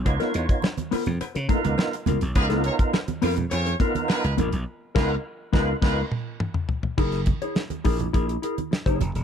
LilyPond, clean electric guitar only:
\new Staff \with { instrumentName = "Clean electric guitar" } { \time 4/4 \key des \mixolydian \tempo 4 = 104 r16 <ces' f' bes'>16 r4 <ces' f' bes'>16 r8. <ces' f' bes'>16 r8. <ces' f' bes'>16 r16 | r16 <ces' f' bes'>16 r4 <ces' f' bes'>16 r8. <ces' f' bes'>16 r8. <ces' f' bes'>16 r16 | r8 <ces' f' bes'>8 r8 <ces' f' bes'>8 <ces' f' bes'>8 r4. | <fes' aes' bes'>16 r8 <fes' aes' des''>16 r8 <fes' aes' bes'>16 r16 <fes' aes' bes'>16 r16 <fes' aes' bes'>16 r8 <fes' aes' des''>16 r8 | }